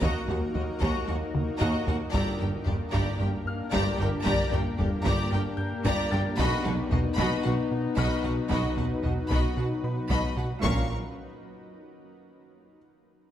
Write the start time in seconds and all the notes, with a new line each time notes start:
Already playing: A#3 D#4 F#4 A#4
0.01 D#2 F#4 D#5 A#5, taiko
0.28 D#2 F#4 A#4 F#5, taiko low
0.54 D#2 F#4 D#5, taiko low
0.80 D#2 F#4 D#5 A#5, taiko
1.06 D#2 F#4 A#4 F#5
1.35 D#2, taiko mid
1.59 D#2 F#4 D#5 A#5, taiko low-mid
1.86 D#2 F#4 A#4 F#5, taiko low
2.12 G1 G2 A#3 D4 G4 A#4 D5 A#5 E6, taiko
2.38 G1 G2 G4 A#4 G5, taiko low
2.65 G1 G2 G4 D5, taiko low
2.92 G1 G2 G4 D5 A#5, taiko
3.19 G1 G2 G4 A#4 G5
3.46 G2 F5 F6
3.72 G1 G2 G4 D5 A#5, taiko
3.99 G1 G2 G4 A#4 G5
4.25 G1 G2 G4 D5 A#5, taiko
4.52 G1 G2 G4 A#4 G5, taiko low
4.78 G1 G2 G4 D5, taiko low
5.04 G1 G2 G4 D5 A#5, taiko
5.31 G1 G2 G4 A#4 G5
5.57 G2 G6
5.85 G1 G2 G4 D5 A#5, taiko
6.11 G1 G2 G4 A#4 G5 A6, taiko rim
6.38 B1 B2 F#3 B3 D#4 F#4 B4 D#5 B5, taiko
6.64 B1 B2 F#4 B4 F#5, taiko low
6.91 B1 B2 F#4 D#5, taiko low
7.18 B1 B2 F#4 D#5 B5, taiko
7.44 B1 B2 F#4 B4 F#5
7.72 B2
7.97 B1 B2 F#4 D#5 B5 F6, taiko
8.24 B1 B2 F#4 B4 F#5
8.50 B1 B2 F#4 D#5 B5, taiko
8.76 B1 B2 F#4 B4 F#5, taiko low
9.03 B1 B2 F#4 D#5, taiko low
9.29 B1 B2 F#4 D#5 B5, taiko
9.56 B1 B2 F#4 B4 F#5
9.84 B2 B4 B5
10.10 B1 B2 F#4 D#5 B5, taiko
10.37 B1 B2 F#4 B4 F#5
10.63 A#1 A#2 C#4 F4 A#4 F5 C#6, taiko